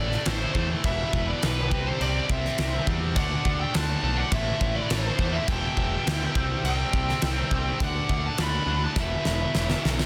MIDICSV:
0, 0, Header, 1, 6, 480
1, 0, Start_track
1, 0, Key_signature, 1, "minor"
1, 0, Tempo, 580833
1, 692, Time_signature, 4, 2, 24, 8
1, 8313, End_track
2, 0, Start_track
2, 0, Title_t, "Lead electric guitar"
2, 0, Program_c, 0, 29
2, 0, Note_on_c, 0, 74, 92
2, 222, Note_on_c, 0, 72, 79
2, 234, Note_off_c, 0, 74, 0
2, 552, Note_off_c, 0, 72, 0
2, 702, Note_on_c, 0, 76, 115
2, 1068, Note_off_c, 0, 76, 0
2, 1071, Note_on_c, 0, 74, 91
2, 1174, Note_off_c, 0, 74, 0
2, 1188, Note_on_c, 0, 71, 87
2, 1545, Note_on_c, 0, 72, 83
2, 1551, Note_off_c, 0, 71, 0
2, 1665, Note_off_c, 0, 72, 0
2, 1665, Note_on_c, 0, 74, 89
2, 1899, Note_off_c, 0, 74, 0
2, 1907, Note_on_c, 0, 76, 87
2, 2347, Note_off_c, 0, 76, 0
2, 2617, Note_on_c, 0, 78, 99
2, 2979, Note_off_c, 0, 78, 0
2, 2982, Note_on_c, 0, 79, 91
2, 3094, Note_on_c, 0, 81, 93
2, 3100, Note_off_c, 0, 79, 0
2, 3448, Note_on_c, 0, 78, 89
2, 3464, Note_off_c, 0, 81, 0
2, 3569, Note_off_c, 0, 78, 0
2, 3572, Note_on_c, 0, 76, 86
2, 3934, Note_on_c, 0, 74, 89
2, 3943, Note_off_c, 0, 76, 0
2, 4033, Note_off_c, 0, 74, 0
2, 4033, Note_on_c, 0, 72, 83
2, 4401, Note_on_c, 0, 76, 95
2, 4413, Note_off_c, 0, 72, 0
2, 4524, Note_off_c, 0, 76, 0
2, 4524, Note_on_c, 0, 79, 110
2, 5487, Note_off_c, 0, 79, 0
2, 5497, Note_on_c, 0, 79, 103
2, 6473, Note_off_c, 0, 79, 0
2, 6476, Note_on_c, 0, 78, 120
2, 6827, Note_on_c, 0, 81, 110
2, 6833, Note_off_c, 0, 78, 0
2, 6930, Note_off_c, 0, 81, 0
2, 6954, Note_on_c, 0, 83, 121
2, 7306, Note_off_c, 0, 83, 0
2, 7309, Note_on_c, 0, 81, 102
2, 7412, Note_off_c, 0, 81, 0
2, 7434, Note_on_c, 0, 76, 83
2, 8111, Note_off_c, 0, 76, 0
2, 8313, End_track
3, 0, Start_track
3, 0, Title_t, "Lead electric guitar"
3, 0, Program_c, 1, 29
3, 0, Note_on_c, 1, 69, 85
3, 193, Note_off_c, 1, 69, 0
3, 240, Note_on_c, 1, 69, 79
3, 562, Note_off_c, 1, 69, 0
3, 708, Note_on_c, 1, 71, 81
3, 1036, Note_off_c, 1, 71, 0
3, 1052, Note_on_c, 1, 71, 64
3, 1164, Note_off_c, 1, 71, 0
3, 1175, Note_on_c, 1, 67, 68
3, 1509, Note_off_c, 1, 67, 0
3, 1540, Note_on_c, 1, 69, 66
3, 1668, Note_off_c, 1, 69, 0
3, 1668, Note_on_c, 1, 67, 86
3, 1900, Note_off_c, 1, 67, 0
3, 1913, Note_on_c, 1, 72, 67
3, 2350, Note_off_c, 1, 72, 0
3, 2621, Note_on_c, 1, 74, 81
3, 2952, Note_off_c, 1, 74, 0
3, 2976, Note_on_c, 1, 76, 68
3, 3086, Note_off_c, 1, 76, 0
3, 3109, Note_on_c, 1, 78, 82
3, 3436, Note_off_c, 1, 78, 0
3, 3465, Note_on_c, 1, 74, 67
3, 3571, Note_off_c, 1, 74, 0
3, 3593, Note_on_c, 1, 72, 83
3, 3918, Note_off_c, 1, 72, 0
3, 3978, Note_on_c, 1, 71, 75
3, 4083, Note_off_c, 1, 71, 0
3, 4083, Note_on_c, 1, 69, 75
3, 4427, Note_off_c, 1, 69, 0
3, 4439, Note_on_c, 1, 72, 75
3, 4561, Note_off_c, 1, 72, 0
3, 4561, Note_on_c, 1, 76, 95
3, 5505, Note_off_c, 1, 76, 0
3, 5527, Note_on_c, 1, 76, 98
3, 6435, Note_off_c, 1, 76, 0
3, 6474, Note_on_c, 1, 74, 94
3, 6798, Note_off_c, 1, 74, 0
3, 6855, Note_on_c, 1, 78, 83
3, 6937, Note_off_c, 1, 78, 0
3, 6947, Note_on_c, 1, 78, 87
3, 7274, Note_off_c, 1, 78, 0
3, 7329, Note_on_c, 1, 78, 79
3, 7423, Note_off_c, 1, 78, 0
3, 7438, Note_on_c, 1, 71, 87
3, 8113, Note_off_c, 1, 71, 0
3, 8313, End_track
4, 0, Start_track
4, 0, Title_t, "Overdriven electric guitar"
4, 0, Program_c, 2, 29
4, 0, Note_on_c, 2, 45, 94
4, 0, Note_on_c, 2, 52, 105
4, 0, Note_on_c, 2, 57, 104
4, 205, Note_off_c, 2, 45, 0
4, 205, Note_off_c, 2, 52, 0
4, 210, Note_off_c, 2, 57, 0
4, 215, Note_on_c, 2, 45, 87
4, 215, Note_on_c, 2, 52, 83
4, 220, Note_on_c, 2, 57, 92
4, 453, Note_off_c, 2, 45, 0
4, 455, Note_off_c, 2, 52, 0
4, 459, Note_off_c, 2, 57, 0
4, 463, Note_on_c, 2, 45, 90
4, 465, Note_on_c, 2, 52, 97
4, 469, Note_on_c, 2, 57, 92
4, 683, Note_off_c, 2, 45, 0
4, 684, Note_off_c, 2, 52, 0
4, 686, Note_off_c, 2, 57, 0
4, 691, Note_on_c, 2, 40, 88
4, 699, Note_on_c, 2, 47, 97
4, 700, Note_on_c, 2, 52, 103
4, 1168, Note_off_c, 2, 40, 0
4, 1170, Note_off_c, 2, 47, 0
4, 1175, Note_off_c, 2, 52, 0
4, 1178, Note_on_c, 2, 40, 89
4, 1180, Note_on_c, 2, 47, 89
4, 1185, Note_on_c, 2, 52, 92
4, 1401, Note_off_c, 2, 40, 0
4, 1402, Note_off_c, 2, 47, 0
4, 1404, Note_off_c, 2, 52, 0
4, 1417, Note_on_c, 2, 48, 93
4, 1419, Note_on_c, 2, 55, 105
4, 1425, Note_on_c, 2, 60, 99
4, 1654, Note_off_c, 2, 48, 0
4, 1660, Note_off_c, 2, 55, 0
4, 1660, Note_off_c, 2, 60, 0
4, 1664, Note_on_c, 2, 48, 94
4, 1670, Note_on_c, 2, 55, 108
4, 1670, Note_on_c, 2, 60, 98
4, 2121, Note_off_c, 2, 48, 0
4, 2125, Note_off_c, 2, 55, 0
4, 2126, Note_off_c, 2, 60, 0
4, 2131, Note_on_c, 2, 48, 83
4, 2135, Note_on_c, 2, 55, 82
4, 2136, Note_on_c, 2, 60, 96
4, 2364, Note_off_c, 2, 48, 0
4, 2369, Note_off_c, 2, 55, 0
4, 2371, Note_off_c, 2, 60, 0
4, 2374, Note_on_c, 2, 48, 98
4, 2379, Note_on_c, 2, 55, 100
4, 2381, Note_on_c, 2, 60, 99
4, 2599, Note_off_c, 2, 48, 0
4, 2601, Note_off_c, 2, 55, 0
4, 2602, Note_off_c, 2, 60, 0
4, 2614, Note_on_c, 2, 50, 93
4, 2617, Note_on_c, 2, 57, 101
4, 2620, Note_on_c, 2, 62, 99
4, 3079, Note_off_c, 2, 50, 0
4, 3081, Note_off_c, 2, 57, 0
4, 3088, Note_off_c, 2, 62, 0
4, 3089, Note_on_c, 2, 50, 91
4, 3091, Note_on_c, 2, 57, 89
4, 3098, Note_on_c, 2, 62, 90
4, 3316, Note_off_c, 2, 50, 0
4, 3320, Note_off_c, 2, 62, 0
4, 3321, Note_off_c, 2, 57, 0
4, 3326, Note_on_c, 2, 50, 94
4, 3330, Note_on_c, 2, 62, 96
4, 3331, Note_on_c, 2, 57, 93
4, 3555, Note_off_c, 2, 50, 0
4, 3557, Note_off_c, 2, 57, 0
4, 3557, Note_off_c, 2, 62, 0
4, 3575, Note_on_c, 2, 45, 105
4, 3580, Note_on_c, 2, 57, 104
4, 3582, Note_on_c, 2, 52, 104
4, 4043, Note_off_c, 2, 45, 0
4, 4050, Note_off_c, 2, 52, 0
4, 4053, Note_on_c, 2, 45, 86
4, 4055, Note_off_c, 2, 57, 0
4, 4060, Note_on_c, 2, 52, 93
4, 4065, Note_on_c, 2, 57, 94
4, 4288, Note_off_c, 2, 45, 0
4, 4297, Note_off_c, 2, 52, 0
4, 4298, Note_off_c, 2, 57, 0
4, 4298, Note_on_c, 2, 45, 88
4, 4307, Note_on_c, 2, 52, 97
4, 4308, Note_on_c, 2, 57, 101
4, 4520, Note_off_c, 2, 45, 0
4, 4524, Note_off_c, 2, 52, 0
4, 4525, Note_off_c, 2, 57, 0
4, 4528, Note_on_c, 2, 40, 101
4, 4529, Note_on_c, 2, 47, 98
4, 4535, Note_on_c, 2, 52, 91
4, 5005, Note_off_c, 2, 40, 0
4, 5011, Note_off_c, 2, 47, 0
4, 5014, Note_off_c, 2, 52, 0
4, 5015, Note_on_c, 2, 40, 80
4, 5021, Note_on_c, 2, 47, 88
4, 5024, Note_on_c, 2, 52, 102
4, 5238, Note_off_c, 2, 40, 0
4, 5241, Note_off_c, 2, 47, 0
4, 5243, Note_off_c, 2, 52, 0
4, 5260, Note_on_c, 2, 48, 92
4, 5261, Note_on_c, 2, 55, 122
4, 5265, Note_on_c, 2, 60, 106
4, 5487, Note_off_c, 2, 55, 0
4, 5489, Note_off_c, 2, 48, 0
4, 5493, Note_off_c, 2, 60, 0
4, 5497, Note_on_c, 2, 55, 107
4, 5499, Note_on_c, 2, 48, 105
4, 5503, Note_on_c, 2, 60, 112
4, 5970, Note_off_c, 2, 48, 0
4, 5974, Note_off_c, 2, 55, 0
4, 5974, Note_off_c, 2, 60, 0
4, 5980, Note_on_c, 2, 48, 87
4, 5984, Note_on_c, 2, 55, 84
4, 5984, Note_on_c, 2, 60, 96
4, 6204, Note_off_c, 2, 48, 0
4, 6205, Note_off_c, 2, 55, 0
4, 6212, Note_off_c, 2, 60, 0
4, 6214, Note_on_c, 2, 48, 83
4, 6215, Note_on_c, 2, 55, 99
4, 6222, Note_on_c, 2, 60, 89
4, 6437, Note_off_c, 2, 48, 0
4, 6438, Note_off_c, 2, 55, 0
4, 6441, Note_off_c, 2, 60, 0
4, 6450, Note_on_c, 2, 50, 91
4, 6451, Note_on_c, 2, 57, 94
4, 6457, Note_on_c, 2, 62, 113
4, 6927, Note_off_c, 2, 50, 0
4, 6931, Note_off_c, 2, 57, 0
4, 6933, Note_off_c, 2, 62, 0
4, 6937, Note_on_c, 2, 50, 84
4, 6941, Note_on_c, 2, 57, 97
4, 6943, Note_on_c, 2, 62, 105
4, 7162, Note_off_c, 2, 50, 0
4, 7165, Note_off_c, 2, 57, 0
4, 7167, Note_off_c, 2, 62, 0
4, 7172, Note_on_c, 2, 50, 92
4, 7175, Note_on_c, 2, 57, 94
4, 7177, Note_on_c, 2, 62, 100
4, 7397, Note_off_c, 2, 50, 0
4, 7398, Note_off_c, 2, 57, 0
4, 7399, Note_off_c, 2, 62, 0
4, 7415, Note_on_c, 2, 40, 98
4, 7422, Note_on_c, 2, 47, 98
4, 7425, Note_on_c, 2, 52, 111
4, 7881, Note_off_c, 2, 40, 0
4, 7883, Note_off_c, 2, 47, 0
4, 7885, Note_off_c, 2, 52, 0
4, 7891, Note_on_c, 2, 40, 79
4, 7893, Note_on_c, 2, 47, 93
4, 7895, Note_on_c, 2, 52, 95
4, 8115, Note_off_c, 2, 40, 0
4, 8118, Note_off_c, 2, 47, 0
4, 8125, Note_off_c, 2, 52, 0
4, 8125, Note_on_c, 2, 40, 96
4, 8128, Note_on_c, 2, 47, 84
4, 8135, Note_on_c, 2, 52, 104
4, 8313, Note_off_c, 2, 40, 0
4, 8313, Note_off_c, 2, 47, 0
4, 8313, Note_off_c, 2, 52, 0
4, 8313, End_track
5, 0, Start_track
5, 0, Title_t, "Picked electric bass"
5, 0, Program_c, 3, 34
5, 0, Note_on_c, 3, 33, 91
5, 131, Note_off_c, 3, 33, 0
5, 216, Note_on_c, 3, 33, 105
5, 372, Note_off_c, 3, 33, 0
5, 454, Note_on_c, 3, 40, 104
5, 611, Note_off_c, 3, 40, 0
5, 694, Note_on_c, 3, 28, 96
5, 851, Note_off_c, 3, 28, 0
5, 935, Note_on_c, 3, 28, 83
5, 1091, Note_off_c, 3, 28, 0
5, 1184, Note_on_c, 3, 35, 94
5, 1414, Note_off_c, 3, 35, 0
5, 1414, Note_on_c, 3, 36, 94
5, 1571, Note_off_c, 3, 36, 0
5, 1656, Note_on_c, 3, 36, 93
5, 1812, Note_off_c, 3, 36, 0
5, 1895, Note_on_c, 3, 36, 97
5, 2052, Note_off_c, 3, 36, 0
5, 2139, Note_on_c, 3, 36, 109
5, 2294, Note_off_c, 3, 36, 0
5, 2373, Note_on_c, 3, 40, 97
5, 2614, Note_off_c, 3, 40, 0
5, 2614, Note_on_c, 3, 38, 88
5, 2771, Note_off_c, 3, 38, 0
5, 2855, Note_on_c, 3, 38, 98
5, 3011, Note_off_c, 3, 38, 0
5, 3102, Note_on_c, 3, 38, 93
5, 3256, Note_off_c, 3, 38, 0
5, 3329, Note_on_c, 3, 35, 99
5, 3487, Note_off_c, 3, 35, 0
5, 3571, Note_on_c, 3, 33, 95
5, 3728, Note_off_c, 3, 33, 0
5, 3807, Note_on_c, 3, 33, 93
5, 3966, Note_off_c, 3, 33, 0
5, 4053, Note_on_c, 3, 33, 102
5, 4210, Note_off_c, 3, 33, 0
5, 4285, Note_on_c, 3, 40, 107
5, 4444, Note_off_c, 3, 40, 0
5, 4528, Note_on_c, 3, 28, 88
5, 4686, Note_off_c, 3, 28, 0
5, 4770, Note_on_c, 3, 28, 95
5, 4927, Note_off_c, 3, 28, 0
5, 5014, Note_on_c, 3, 38, 93
5, 5170, Note_off_c, 3, 38, 0
5, 5251, Note_on_c, 3, 36, 101
5, 5408, Note_off_c, 3, 36, 0
5, 5480, Note_on_c, 3, 36, 100
5, 5640, Note_off_c, 3, 36, 0
5, 5731, Note_on_c, 3, 36, 91
5, 5888, Note_off_c, 3, 36, 0
5, 5971, Note_on_c, 3, 36, 99
5, 6128, Note_off_c, 3, 36, 0
5, 6207, Note_on_c, 3, 36, 101
5, 6365, Note_off_c, 3, 36, 0
5, 6449, Note_on_c, 3, 38, 92
5, 6606, Note_off_c, 3, 38, 0
5, 6690, Note_on_c, 3, 38, 87
5, 6847, Note_off_c, 3, 38, 0
5, 6931, Note_on_c, 3, 38, 99
5, 7088, Note_off_c, 3, 38, 0
5, 7159, Note_on_c, 3, 38, 91
5, 7320, Note_off_c, 3, 38, 0
5, 7404, Note_on_c, 3, 28, 105
5, 7563, Note_off_c, 3, 28, 0
5, 7653, Note_on_c, 3, 28, 92
5, 7810, Note_off_c, 3, 28, 0
5, 7891, Note_on_c, 3, 28, 104
5, 8049, Note_off_c, 3, 28, 0
5, 8140, Note_on_c, 3, 35, 95
5, 8295, Note_off_c, 3, 35, 0
5, 8313, End_track
6, 0, Start_track
6, 0, Title_t, "Drums"
6, 97, Note_on_c, 9, 38, 31
6, 180, Note_off_c, 9, 38, 0
6, 210, Note_on_c, 9, 49, 74
6, 216, Note_on_c, 9, 38, 126
6, 292, Note_off_c, 9, 49, 0
6, 298, Note_off_c, 9, 38, 0
6, 453, Note_on_c, 9, 36, 80
6, 536, Note_off_c, 9, 36, 0
6, 693, Note_on_c, 9, 49, 66
6, 695, Note_on_c, 9, 36, 119
6, 775, Note_off_c, 9, 49, 0
6, 778, Note_off_c, 9, 36, 0
6, 936, Note_on_c, 9, 36, 76
6, 1019, Note_off_c, 9, 36, 0
6, 1177, Note_on_c, 9, 49, 62
6, 1182, Note_on_c, 9, 38, 123
6, 1259, Note_off_c, 9, 49, 0
6, 1265, Note_off_c, 9, 38, 0
6, 1417, Note_on_c, 9, 36, 114
6, 1499, Note_off_c, 9, 36, 0
6, 1659, Note_on_c, 9, 49, 62
6, 1742, Note_off_c, 9, 49, 0
6, 1897, Note_on_c, 9, 36, 101
6, 1979, Note_off_c, 9, 36, 0
6, 2026, Note_on_c, 9, 38, 35
6, 2109, Note_off_c, 9, 38, 0
6, 2131, Note_on_c, 9, 49, 59
6, 2137, Note_on_c, 9, 38, 121
6, 2214, Note_off_c, 9, 49, 0
6, 2219, Note_off_c, 9, 38, 0
6, 2373, Note_on_c, 9, 36, 90
6, 2455, Note_off_c, 9, 36, 0
6, 2612, Note_on_c, 9, 36, 115
6, 2613, Note_on_c, 9, 49, 65
6, 2695, Note_off_c, 9, 36, 0
6, 2695, Note_off_c, 9, 49, 0
6, 2852, Note_on_c, 9, 36, 82
6, 2935, Note_off_c, 9, 36, 0
6, 3092, Note_on_c, 9, 49, 67
6, 3098, Note_on_c, 9, 38, 124
6, 3175, Note_off_c, 9, 49, 0
6, 3181, Note_off_c, 9, 38, 0
6, 3569, Note_on_c, 9, 36, 115
6, 3569, Note_on_c, 9, 49, 66
6, 3652, Note_off_c, 9, 36, 0
6, 3652, Note_off_c, 9, 49, 0
6, 3809, Note_on_c, 9, 36, 101
6, 3891, Note_off_c, 9, 36, 0
6, 4050, Note_on_c, 9, 49, 74
6, 4056, Note_on_c, 9, 38, 113
6, 4132, Note_off_c, 9, 49, 0
6, 4138, Note_off_c, 9, 38, 0
6, 4287, Note_on_c, 9, 36, 83
6, 4370, Note_off_c, 9, 36, 0
6, 4529, Note_on_c, 9, 36, 127
6, 4529, Note_on_c, 9, 49, 72
6, 4611, Note_off_c, 9, 36, 0
6, 4612, Note_off_c, 9, 49, 0
6, 4769, Note_on_c, 9, 36, 71
6, 4852, Note_off_c, 9, 36, 0
6, 5016, Note_on_c, 9, 49, 74
6, 5021, Note_on_c, 9, 38, 119
6, 5098, Note_off_c, 9, 49, 0
6, 5104, Note_off_c, 9, 38, 0
6, 5250, Note_on_c, 9, 36, 119
6, 5333, Note_off_c, 9, 36, 0
6, 5493, Note_on_c, 9, 49, 61
6, 5575, Note_off_c, 9, 49, 0
6, 5730, Note_on_c, 9, 36, 94
6, 5813, Note_off_c, 9, 36, 0
6, 5858, Note_on_c, 9, 38, 30
6, 5941, Note_off_c, 9, 38, 0
6, 5963, Note_on_c, 9, 49, 66
6, 5969, Note_on_c, 9, 38, 123
6, 6046, Note_off_c, 9, 49, 0
6, 6051, Note_off_c, 9, 38, 0
6, 6208, Note_on_c, 9, 36, 86
6, 6291, Note_off_c, 9, 36, 0
6, 6448, Note_on_c, 9, 36, 127
6, 6450, Note_on_c, 9, 49, 62
6, 6531, Note_off_c, 9, 36, 0
6, 6532, Note_off_c, 9, 49, 0
6, 6689, Note_on_c, 9, 36, 80
6, 6771, Note_off_c, 9, 36, 0
6, 6923, Note_on_c, 9, 49, 71
6, 6929, Note_on_c, 9, 38, 117
6, 7005, Note_off_c, 9, 49, 0
6, 7011, Note_off_c, 9, 38, 0
6, 7404, Note_on_c, 9, 38, 64
6, 7405, Note_on_c, 9, 36, 111
6, 7487, Note_off_c, 9, 38, 0
6, 7488, Note_off_c, 9, 36, 0
6, 7646, Note_on_c, 9, 38, 91
6, 7729, Note_off_c, 9, 38, 0
6, 7889, Note_on_c, 9, 38, 95
6, 7972, Note_off_c, 9, 38, 0
6, 8013, Note_on_c, 9, 38, 89
6, 8095, Note_off_c, 9, 38, 0
6, 8142, Note_on_c, 9, 38, 96
6, 8225, Note_off_c, 9, 38, 0
6, 8259, Note_on_c, 9, 38, 107
6, 8313, Note_off_c, 9, 38, 0
6, 8313, End_track
0, 0, End_of_file